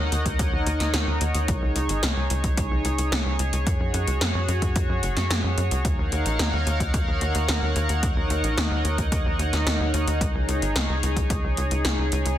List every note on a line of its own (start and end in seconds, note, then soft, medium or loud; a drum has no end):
0.00 0.11 D#2 medium
0.00 3.63 D#4 medium
0.00 1.44 A#4 medium
0.00 10.17 C#5 medium
0.00 1.46 D#5 medium
0.00 1.44 F#5 medium
0.12 0.24 D#2 medium
0.12 closed hi-hat medium
0.26 0.38 D#2 medium
0.26 kick medium
0.26 closed hi-hat medium
0.39 0.52 D#2 loud
0.39 kick loud
0.39 closed hi-hat medium
0.53 0.65 D#2 medium
0.67 0.79 D#2 medium
0.67 closed hi-hat medium
0.80 0.93 D#2 medium
0.80 snare soft
0.80 closed hi-hat medium
0.94 1.06 D#2 loud
0.94 snare loud
0.94 closed hi-hat loud
1.07 1.20 D#2 medium
1.21 1.34 D#2 medium
1.21 closed hi-hat medium
1.35 1.47 D#2 medium
1.35 closed hi-hat medium
1.48 1.61 C#2 loud
1.48 5.81 G#4 medium
1.48 kick loud
1.48 closed hi-hat medium
1.62 1.75 C#2 medium
1.76 1.88 C#2 medium
1.76 closed hi-hat medium
1.89 2.02 G#1 medium
1.89 closed hi-hat medium
2.03 2.16 C#2 loud
2.03 snare loud
2.03 closed hi-hat medium
2.17 2.29 C#2 medium
2.30 2.43 C#2 medium
2.30 closed hi-hat medium
2.44 2.56 C#2 medium
2.44 kick medium
2.44 closed hi-hat medium
2.57 2.70 C#2 loud
2.57 kick loud
2.57 closed hi-hat medium
2.71 2.84 C#2 medium
2.85 2.97 C#2 medium
2.85 closed hi-hat medium
2.98 3.11 C#2 medium
2.98 closed hi-hat medium
3.12 3.25 C#2 loud
3.12 snare loud
3.12 closed hi-hat medium
3.26 3.38 C#2 medium
3.39 3.52 C#2 medium
3.39 closed hi-hat medium
3.53 3.66 C#2 medium
3.53 closed hi-hat medium
3.67 3.79 F#2 loud
3.67 5.83 F#4 medium
3.67 kick loud
3.67 closed hi-hat medium
3.80 3.93 F#2 medium
3.94 4.06 F#2 loud
3.94 closed hi-hat medium
4.08 4.20 C#2 medium
4.08 closed hi-hat medium
4.21 4.34 F#2 loud
4.21 snare loud
4.21 closed hi-hat medium
4.35 4.47 F#2 medium
4.48 4.61 F#2 medium
4.48 closed hi-hat medium
4.62 4.75 F#2 medium
4.62 kick medium
4.62 closed hi-hat medium
4.76 4.88 F#2 loud
4.76 kick loud
4.76 closed hi-hat medium
4.89 5.02 F#2 medium
5.03 5.15 F#1 medium
5.03 closed hi-hat medium
5.17 5.29 F#2 medium
5.17 snare soft
5.17 closed hi-hat medium
5.30 5.43 F#2 loud
5.30 snare loud
5.30 closed hi-hat medium
5.44 5.56 F#2 medium
5.58 5.70 F#2 medium
5.58 closed hi-hat medium
5.71 5.84 C#2 medium
5.71 closed hi-hat medium
5.85 5.97 D#2 loud
5.85 12.35 D#4 medium
5.85 10.17 A#4 medium
5.85 8.01 F5 medium
5.85 10.17 F#5 medium
5.85 kick loud
5.85 closed hi-hat medium
5.99 6.11 D#2 medium
6.12 6.25 D#2 medium
6.12 closed hi-hat medium
6.26 6.38 A#1 medium
6.26 closed hi-hat medium
6.39 6.52 D#2 loud
6.39 snare loud
6.39 closed hi-hat medium
6.53 6.66 D#2 medium
6.67 6.79 D#2 medium
6.67 closed hi-hat medium
6.80 6.93 D#2 medium
6.80 kick medium
6.80 closed hi-hat medium
6.94 7.06 D#2 loud
6.94 kick loud
6.94 closed hi-hat medium
7.08 7.20 D#2 medium
7.21 7.34 D#2 medium
7.21 closed hi-hat medium
7.35 7.47 D#2 medium
7.35 closed hi-hat medium
7.49 7.61 D#2 loud
7.49 snare loud
7.49 closed hi-hat medium
7.62 7.75 D#2 medium
7.76 7.88 D#2 medium
7.76 closed hi-hat medium
7.89 8.02 D#2 medium
7.89 closed hi-hat medium
8.03 8.15 D#2 loud
8.03 10.19 D#5 medium
8.03 kick loud
8.03 closed hi-hat medium
8.17 8.29 D#2 medium
8.30 8.43 D#2 medium
8.30 closed hi-hat medium
8.44 8.56 A#1 medium
8.44 closed hi-hat medium
8.58 8.70 D#2 loud
8.58 snare loud
8.58 closed hi-hat medium
8.71 8.84 D#2 medium
8.85 8.97 D#2 medium
8.85 closed hi-hat medium
8.98 9.11 D#2 medium
8.98 kick medium
8.98 closed hi-hat medium
9.12 9.25 D#2 loud
9.12 kick loud
9.12 closed hi-hat medium
9.26 9.38 D#2 medium
9.39 9.52 D#2 medium
9.39 closed hi-hat medium
9.53 9.65 D#2 medium
9.53 snare soft
9.53 closed hi-hat medium
9.66 9.79 D#2 loud
9.66 snare loud
9.66 closed hi-hat medium
9.80 9.93 D#2 medium
9.94 10.06 D#2 medium
9.94 closed hi-hat medium
10.07 10.20 D#2 medium
10.07 closed hi-hat medium
10.21 10.34 C#2 loud
10.21 12.38 G#4 medium
10.21 12.38 C#5 medium
10.21 kick loud
10.21 closed hi-hat medium
10.35 10.47 C#2 medium
10.48 10.61 C#2 loud
10.48 closed hi-hat medium
10.62 10.75 G#1 medium
10.62 closed hi-hat medium
10.76 10.88 C#2 loud
10.76 snare loud
10.76 closed hi-hat medium
10.89 11.02 C#2 medium
11.03 11.16 C#2 medium
11.03 closed hi-hat medium
11.16 11.29 C#2 medium
11.16 kick medium
11.16 closed hi-hat medium
11.30 11.43 C#2 loud
11.30 kick loud
11.30 closed hi-hat medium
11.44 11.56 C#2 medium
11.57 11.70 C#2 medium
11.57 closed hi-hat medium
11.71 11.84 C#2 medium
11.71 closed hi-hat medium
11.85 11.97 C#2 loud
11.85 snare loud
11.85 closed hi-hat medium
11.99 12.11 C#2 medium
12.12 12.25 C#2 loud
12.12 closed hi-hat medium
12.26 12.38 C#2 medium
12.26 closed hi-hat medium